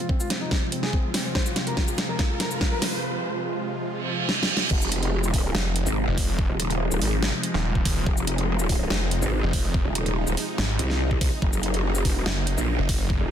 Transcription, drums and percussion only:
0.09 kick
0.20 shaker
0.30 snare, closed hi-hat
0.51 kick, snare
0.72 closed hi-hat
0.83 snare
0.93 kick
1.14 snare, open hi-hat
1.35 kick, snare
1.46 shaker
1.56 snare, closed hi-hat
1.67 closed hi-hat
1.77 kick, snare
1.88 shaker
1.98 snare, closed hi-hat
2.19 kick, snare
2.40 snare, closed hi-hat
2.51 shaker
2.61 kick, snare
2.82 snare, open hi-hat
4.29 snare
4.43 snare
4.57 snare
4.71 kick, crash
4.82 shaker
4.92 closed hi-hat
5.03 closed hi-hat
5.24 shaker
5.34 kick, open hi-hat
5.55 snare
5.76 closed hi-hat
5.87 shaker
6.18 kick, open hi-hat
6.39 kick
6.60 closed hi-hat
6.70 closed hi-hat
6.91 shaker
7.02 open hi-hat
7.22 snare
7.43 closed hi-hat
7.54 snare
7.75 kick
7.85 kick, open hi-hat
8.06 kick
8.17 shaker
8.27 closed hi-hat
8.38 closed hi-hat
8.59 shaker
8.69 kick, open hi-hat
8.90 snare
9.11 closed hi-hat
9.22 shaker
9.53 kick, open hi-hat
9.74 kick
9.95 closed hi-hat
10.06 closed hi-hat
10.27 shaker
10.37 open hi-hat
10.58 snare
10.79 closed hi-hat
10.90 snare
11.11 kick
11.21 kick, open hi-hat
11.42 kick
11.53 shaker
11.63 closed hi-hat
11.74 closed hi-hat
11.95 shaker
12.05 kick, open hi-hat
12.26 snare
12.47 closed hi-hat
12.58 shaker
12.89 kick, open hi-hat
13.10 kick

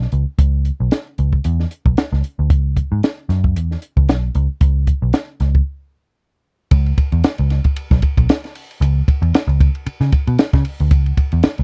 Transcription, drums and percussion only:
0.02 snare
0.12 closed hi-hat
0.39 kick, closed hi-hat
0.65 closed hi-hat
0.91 snare, closed hi-hat
1.18 closed hi-hat
1.33 kick
1.44 closed hi-hat
1.60 snare
1.71 closed hi-hat
1.86 kick
1.97 snare, closed hi-hat
2.13 snare
2.24 closed hi-hat
2.50 kick, closed hi-hat
2.77 kick, closed hi-hat
3.03 snare, closed hi-hat
3.30 snare, closed hi-hat
3.44 kick
3.56 closed hi-hat
3.71 snare
3.82 closed hi-hat
3.97 kick
4.09 snare, closed hi-hat
4.35 closed hi-hat
4.61 kick, closed hi-hat
4.87 kick, closed hi-hat
5.13 snare, closed hi-hat
5.40 snare, closed hi-hat
5.55 kick
6.71 kick, ride bell
6.86 ride bell
6.98 kick, ride bell
7.12 ride bell
7.24 snare, ride bell
7.38 ride bell
7.50 snare, ride bell
7.64 kick, ride bell
7.76 ride bell
7.91 kick, snare
8.02 kick, ride bell
8.17 kick, ride bell
8.29 snare, ride bell
8.44 snare, ride bell
8.55 open hi-hat, ride bell
8.71 ride bell
8.82 hi-hat pedal, ride bell
9.08 kick, ride bell
9.22 ride bell
9.34 snare, ride bell
9.49 ride bell
9.60 kick, ride bell
9.75 ride bell
9.86 ride bell
10.01 snare, ride bell
10.12 kick, ride bell
10.27 ride bell
10.38 snare, ride bell
10.53 kick, snare, ride bell
10.65 open hi-hat, ride bell
10.80 ride bell
10.91 kick, hi-hat pedal, ride bell
11.06 ride bell
11.17 kick, ride bell
11.32 ride bell
11.43 snare, ride bell
11.58 ride bell

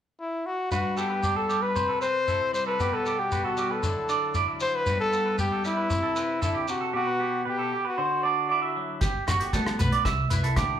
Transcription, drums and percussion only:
0.72 shekere
0.97 shekere
1.23 shekere
1.50 shekere
1.76 shekere
2.02 shekere
2.28 shekere
2.54 shekere
2.80 shekere
3.06 shekere
3.32 shekere
3.57 shekere
3.83 shekere
4.09 shekere
4.34 shekere
4.60 shekere
4.86 shekere
5.13 shekere
5.38 shekere
5.65 shekere
5.90 shekere
6.16 shekere
6.42 shekere
6.68 shekere
9.01 kick, closed hi-hat, muted conga, shekere
9.28 cross-stick, closed hi-hat, shekere
9.41 closed hi-hat
9.53 kick, closed hi-hat, high conga, shekere
9.66 cross-stick
9.79 closed hi-hat, muted conga, high conga, shekere
9.92 closed hi-hat
10.05 kick, cross-stick, closed hi-hat, muted conga, shekere
10.30 closed hi-hat, muted conga, shekere
10.44 closed hi-hat
10.56 kick, cross-stick, closed hi-hat, high conga, shekere

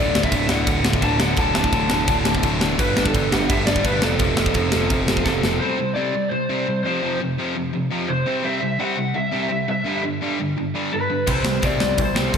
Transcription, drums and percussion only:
0.15 snare
0.23 kick
0.32 kick, crash
0.49 snare
0.67 kick, crash
0.85 snare
0.93 kick
1.02 kick, crash
1.20 snare
1.36 kick, crash
1.55 snare
1.64 kick
1.72 kick, crash
1.90 snare
2.07 kick, crash
2.25 snare
2.35 kick
2.43 kick, crash
2.61 snare
2.79 kick, crash
2.97 snare
3.06 kick
3.15 kick, crash
3.32 snare
3.50 kick, crash
3.67 snare
3.76 kick
3.84 kick, crash
4.02 snare
4.19 kick, crash
4.37 snare
4.46 kick
4.54 kick, crash
4.72 snare
4.90 kick, crash
5.08 snare
5.17 kick
5.26 kick, snare
5.43 snare
11.27 kick, crash
11.45 snare
11.62 kick, open hi-hat
11.80 snare
11.98 kick, open hi-hat
12.16 snare
12.34 kick, open hi-hat

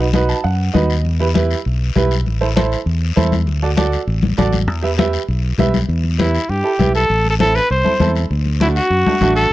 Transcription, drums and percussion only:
0.14 high conga, short guiro
0.29 short guiro
0.44 long guiro
0.75 high conga, short guiro
0.90 short guiro
1.05 high conga, long guiro
1.20 high conga
1.35 high conga, short guiro
1.51 short guiro
1.65 long guiro
1.96 high conga, short guiro
2.11 short guiro
2.26 high conga, long guiro
2.42 high conga
2.56 high conga, short guiro
2.72 short guiro
2.87 long guiro
3.17 high conga, short guiro
3.32 high conga, short guiro
3.47 high conga, long guiro
3.63 high conga
3.77 high conga, short guiro
3.92 short guiro
4.08 long guiro
4.23 high conga
4.37 high conga, short guiro
4.53 high conga, short guiro
4.68 high conga, long guiro
4.84 high conga
4.98 high conga, short guiro
5.13 short guiro
5.28 long guiro
5.59 high conga, short guiro
5.74 high conga, short guiro
5.89 high conga, long guiro
6.04 high conga
6.20 high conga, short guiro
6.35 short guiro
6.49 long guiro
6.79 high conga, short guiro
6.95 short guiro
7.10 high conga, long guiro
7.25 high conga
7.40 high conga, short guiro
7.55 short guiro
7.70 long guiro
7.86 high conga
8.00 high conga, short guiro
8.16 short guiro
8.31 high conga, long guiro
8.46 high conga
8.61 high conga, short guiro
8.76 short guiro
8.91 long guiro
9.07 high conga
9.21 high conga, short guiro
9.37 short guiro

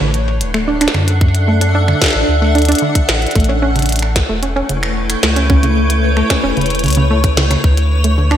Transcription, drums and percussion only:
0.14 closed hi-hat
0.41 closed hi-hat
0.54 finger snap
0.81 finger snap, closed hi-hat
0.88 snare
0.94 finger snap
1.08 closed hi-hat
1.21 kick
1.35 closed hi-hat
1.61 closed hi-hat
1.88 finger snap
2.02 kick, snare, closed hi-hat
2.04 snare
2.06 snare
2.08 snare
2.10 snare
2.13 snare
2.55 closed hi-hat
2.58 closed hi-hat
2.62 closed hi-hat
2.65 closed hi-hat
2.69 closed hi-hat
2.72 closed hi-hat
2.75 closed hi-hat
2.79 closed hi-hat
2.95 kick, closed hi-hat
3.09 snare
3.22 closed hi-hat
3.27 closed hi-hat
3.31 closed hi-hat
3.35 kick, closed hi-hat
3.40 closed hi-hat
3.44 closed hi-hat
3.76 closed hi-hat
3.79 closed hi-hat
3.82 closed hi-hat
3.86 closed hi-hat
3.89 closed hi-hat
3.92 closed hi-hat
3.96 closed hi-hat
3.99 finger snap, closed hi-hat
4.16 kick, snare, closed hi-hat
4.43 closed hi-hat
4.69 closed hi-hat
4.83 finger snap
5.10 finger snap, closed hi-hat
5.23 finger snap, snare
5.36 closed hi-hat
5.50 kick
5.63 closed hi-hat
5.90 closed hi-hat
6.17 finger snap
6.30 kick, snare, closed hi-hat
6.57 closed hi-hat
6.61 closed hi-hat
6.66 closed hi-hat
6.70 closed hi-hat
6.75 closed hi-hat
6.79 closed hi-hat
6.84 closed hi-hat
6.86 closed hi-hat
6.88 closed hi-hat
6.90 closed hi-hat
6.93 closed hi-hat
6.95 closed hi-hat
7.24 kick, closed hi-hat
7.37 snare
7.51 finger snap, closed hi-hat
7.64 kick
7.77 closed hi-hat
8.04 closed hi-hat
8.31 finger snap

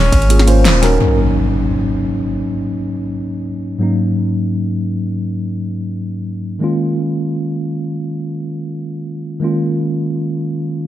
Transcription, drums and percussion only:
0.12 kick, closed hi-hat, ride
0.22 closed hi-hat
0.30 closed hi-hat, ride
0.39 snare, closed hi-hat
0.48 closed hi-hat, ride
0.65 snare, closed hi-hat, ride
0.83 snare, closed hi-hat, ride

